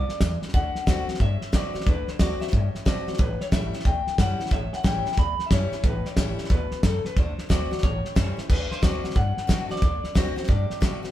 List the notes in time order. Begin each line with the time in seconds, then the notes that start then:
Already playing: F3 D5
0.09 muted upright bass stroke, snare
0.21 E2 E3, kick, snare, hi-hat pedal
0.42 muted upright bass stroke, snare
0.48 snare
0.54 D2 D3 F#5, kick, snare
0.75 muted upright bass stroke, snare
0.86 D2 D3 A3 C4 F#4, kick, snare, hi-hat pedal
1.08 C4 F#4, muted upright bass stroke, snare
1.14 snare
1.20 G2 A2 E5, kick, snare
1.41 muted upright bass stroke, snare
1.52 B2 D3 A3 C4 F#4 D5, kick, snare, hi-hat pedal
1.74 C4 F#4, muted upright bass stroke, snare
1.80 snare
1.86 D2 D3 B4, kick, snare
2.08 C5, muted upright bass stroke, snare
2.19 D2 D3 A3 C4 F#4 D5, kick, snare, hi-hat pedal
2.40 C4 F#4 E5, muted upright bass stroke, snare
2.47 snare
2.52 G2 A2, kick, snare
2.74 muted upright bass stroke, snare
2.85 B2 D3 A3 C4 F#4 D5, kick, snare, hi-hat pedal
3.07 C4 F#4, muted upright bass stroke, snare
3.13 snare
3.18 A1 A2 B4, kick, snare
3.40 C#5, muted upright bass stroke, snare
3.52 A1 E3 G3 C#4 E4 E5, kick, snare, hi-hat pedal
3.73 C#4 E4, muted upright bass stroke, snare
3.80 snare
3.85 D2 E2 G5, kick, snare
4.06 muted upright bass stroke, snare
4.18 F#2 E3 G3 C#4 E4 F#5, kick, snare, hi-hat pedal
4.39 C#4 E4, muted upright bass stroke, snare
4.46 snare
4.51 A1 A2 E5, kick, snare
4.72 F#5, muted upright bass stroke, snare
4.83 A1 E3 G3 C#4 E4 G5, kick, snare, hi-hat pedal
5.06 C#4 E4, snare
5.12 snare
5.17 D2 E2 B5, kick, snare
5.39 muted upright bass stroke, snare
5.46 E5
5.51 F#2 E3 G3 C#4 E4 C#5, kick, snare, hi-hat pedal
5.72 C#4 E4, muted upright bass stroke, snare
5.83 A1 A2 B4, kick, snare
6.05 C#5, muted upright bass stroke, snare
6.17 A1 E3 G3 C#4 E4, kick, snare, hi-hat pedal
6.38 muted upright bass stroke, snare
6.44 snare
6.50 D2 B2 B4, kick, snare
6.71 muted upright bass stroke, snare
6.83 F#2 C#3 A4, kick, snare, hi-hat pedal
7.05 B4, muted upright bass stroke, snare
7.17 D2 D3 C5, kick, snare
7.38 muted upright bass stroke, snare
7.49 D2 D3 A3 C4 F#4 D5, kick, snare, hi-hat pedal
7.71 C4 F#4, muted upright bass stroke, snare
7.78 snare
7.83 A1 A2 C#5, kick, snare
8.05 muted upright bass stroke, snare
8.15 F#2 E3 G3 C#4 E4 C5, kick, snare, hi-hat pedal
8.37 C#4 E4, muted upright bass stroke, snare
8.50 D2 D3 B4, kick, snare, crash
8.71 C5, muted upright bass stroke, snare
8.82 D2 D3 A3 C4 F#4 D5, kick, snare, hi-hat pedal
9.04 C4 F#4, muted upright bass stroke, snare
9.10 snare
9.15 G2 A2 F#5, kick, snare
9.37 muted upright bass stroke, snare
9.47 B2 D3 A3 C4 F#4, kick, snare, hi-hat pedal
9.69 C4 F#4 D5, muted upright bass stroke, snare
9.76 snare
9.82 D2 D3, kick, snare
10.03 muted upright bass stroke, snare
10.15 D2 D3 A3 C4 F#4 C5, kick, snare, hi-hat pedal
10.36 C4 F#4, muted upright bass stroke, snare
10.43 snare
10.48 G2 A2 D5, kick, snare
10.70 muted upright bass stroke, snare
10.81 B2 D3 A3 C4 F#4, kick, snare, hi-hat pedal
11.03 C4 F#4, muted upright bass stroke, snare